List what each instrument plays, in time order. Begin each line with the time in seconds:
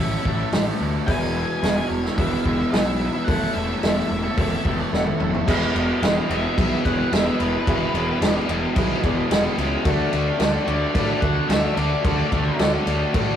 Already playing: fingered electric bass A1, overdriven electric guitar A2 A3 C#4 E4, lead electric guitar E5
0.00 overdriven electric guitar E3 A3
0.25 fingered electric bass A1, overdriven electric guitar E3 A3 C#4 E4, kick
0.38 overdriven electric guitar A3 C#4 E4
0.52 fingered electric bass A1, overdriven electric guitar A2 E3 A3 C#4 E4, snare, open hi-hat
0.66 overdriven electric guitar A3 C#4 E4
0.79 fingered electric bass D2, overdriven electric guitar E3 A3 C#4 E4
0.93 overdriven electric guitar A3 C#4 E4
1.06 fingered electric bass E1, overdriven electric guitar E2 B2 E3 G#3 B3 E4, upright piano G#4 B4 E5, lead electric guitar G#5, kick, open hi-hat
1.34 overdriven electric guitar E3 G#3 B3 E4
1.62 fingered electric bass E1, overdriven electric guitar E2 B2 E3 G#3 B3 E4, upright piano G#4 B4 E5, snare, open hi-hat
1.76 overdriven electric guitar E3 G#3 B3 E4
1.88 fingered electric bass E1, lead electric guitar C#5, muted overdriven electric guitar stroke
2.03 overdriven electric guitar E3 G#3 B3 E4, snare
2.16 fingered electric bass E1, overdriven electric guitar E2 B2 E3, upright piano G#4 B4 E5, lead electric guitar E5, kick, open hi-hat
2.44 fingered electric bass E1, overdriven electric guitar E3 G#3 B3 E4, kick
2.58 overdriven electric guitar E3 G#3 B3 E4
2.71 fingered electric bass B1, overdriven electric guitar E2 B2 E3 G#3 B3 E4, upright piano G#4 B4 F#5, lead electric guitar E5, snare, open hi-hat
2.85 overdriven electric guitar E3 G#3 B3 E4
2.99 overdriven electric guitar E3 G#3 B3 E4
3.13 overdriven electric guitar E3 G#3 B3 E4
3.24 fingered electric bass E1, overdriven electric guitar A2 E3 A3 C#4, upright piano A4 C#5 E5, lead electric guitar F#5, kick, open hi-hat
3.29 overdriven electric guitar E4
3.53 fingered electric bass E1, overdriven electric guitar E3 A3 C#4 E4, lead electric guitar E5
3.79 fingered electric bass E1, overdriven electric guitar E3 A3, upright piano A4, lead electric guitar E5, open hi-hat
3.83 overdriven electric guitar C#4 E4, upright piano C#5 E5, snare
3.95 overdriven electric guitar A3 C#4 E4
4.09 fingered electric bass E1, muted overdriven electric guitar stroke
4.22 overdriven electric guitar A3 C#4 E4
4.36 fingered electric bass E1, overdriven electric guitar A2 E3 A3, upright piano A4 C#5 E5, kick, open hi-hat
4.63 fingered electric bass E1, overdriven electric guitar E3 A3 C#4 E4, kick
4.76 overdriven electric guitar A3 C#4 E4
4.90 fingered electric bass E1, overdriven electric guitar E3 A3 C#4 E4, upright piano A4 C#5 A5, snare
4.94 upright piano F#5
5.05 overdriven electric guitar A3 C#4 E4, high tom
5.18 fingered electric bass E1, overdriven electric guitar E3 A3 C#4 E4, upright piano E5, mid tom
5.32 overdriven electric guitar A3 C#4 E4, floor tom
5.46 fingered electric bass E1, overdriven electric guitar E2 B2 E3 G#3 B3 G#4, upright piano G#4 B4 E5, kick, crash
5.74 fingered electric bass E1, overdriven electric guitar E2 B2 E3 G#3 B3 G#4, crash
6.02 fingered electric bass E1, overdriven electric guitar E2 B2 E3 G#3 B3 G#4, upright piano G#4 B4 E5, snare, crash
6.29 fingered electric bass E1, overdriven electric guitar E2 B2 E3 G#3 B3 G#4, lead electric guitar E5, crash
6.57 fingered electric bass B1, overdriven electric guitar E2 B2 E3 G#3 B3 G#4, upright piano G#4 B4 E5, kick, crash
6.84 fingered electric bass E1, overdriven electric guitar E2 B2 E3 G#3 B3 G#4, upright piano G#4 B4 C#5, lead electric guitar F#5, kick, crash
7.11 fingered electric bass E1, overdriven electric guitar E2 B2 E3 G#3 B3 G#4, upright piano G#4 B4 E5, lead electric guitar E5, snare, crash
7.39 fingered electric bass E1, overdriven electric guitar E2 B2 E3 G#3 B3 G#4, lead electric guitar B4, crash
7.66 fingered electric bass E1, overdriven electric guitar E2 B2 E3 G#3 B3 G#4, upright piano G#4 B4 E5, kick, crash
7.94 fingered electric bass E1, overdriven electric guitar E2 B2 E3 G#3 B3 G#4, crash
8.20 fingered electric bass E1, overdriven electric guitar E2 B2 E3 G#3 B3 G#4, upright piano G#4 B4 D5, snare, crash
8.48 fingered electric bass E1, overdriven electric guitar E2 B2 E3 G#3 B3 G#4, crash
8.76 fingered electric bass B1, overdriven electric guitar E2 B2 E3 G#3 B3 G#4, upright piano G#4 B4 E5, kick, crash
9.02 fingered electric bass E1, overdriven electric guitar E2 B2 E3 G#3 B3 G#4, upright piano G#4 B4 D5, kick, crash
9.30 fingered electric bass E1, overdriven electric guitar E2 B2 E3 G#3 B3 G#4, upright piano G#4 B4 F#5, snare, crash
9.57 fingered electric bass C#2, overdriven electric guitar E2 B2 E3 G#3 B3 G#4, crash
9.85 fingered electric bass D2, overdriven electric guitar D3 A3 D4 F#4, upright piano F#4 A4 D5, kick, crash
10.11 fingered electric bass D2, overdriven electric guitar D3 A3 D4 F#4, crash
10.39 fingered electric bass D2, overdriven electric guitar D3 A3 D4 F#4, upright piano F#4 A4 D5, snare, crash
10.66 fingered electric bass D2, overdriven electric guitar D3 A3 D4 F#4, lead electric guitar D5, crash
10.93 fingered electric bass A2, overdriven electric guitar D3 A3 D4 F#4, upright piano F#4 A4 D5, kick, crash
11.20 fingered electric bass D2, overdriven electric guitar D3 A3 D4 F#4, upright piano F#4 A4 E5, lead electric guitar F#5, kick, crash
11.48 fingered electric bass D2, overdriven electric guitar D3 A3 D4 F#4, upright piano F#4 A4 D5, lead electric guitar E5, snare, crash
11.76 fingered electric bass D2, overdriven electric guitar D3 A3 D4 F#4, lead electric guitar D5, crash
12.04 fingered electric bass D2, overdriven electric guitar D3 A3 D4 F#4, upright piano F#4 A4 D5, kick, crash
12.31 fingered electric bass D2, overdriven electric guitar D3 A3 D4 F#4, kick, crash
12.58 fingered electric bass D2, overdriven electric guitar D3 A3 D4 F#4, upright piano F#4 A4 C#5, snare, crash
12.86 fingered electric bass D2, overdriven electric guitar D3 A3 D4 F#4, crash
13.14 fingered electric bass A2, overdriven electric guitar D3 A3 D4 F#4, upright piano F#4 A4 D5, kick, crash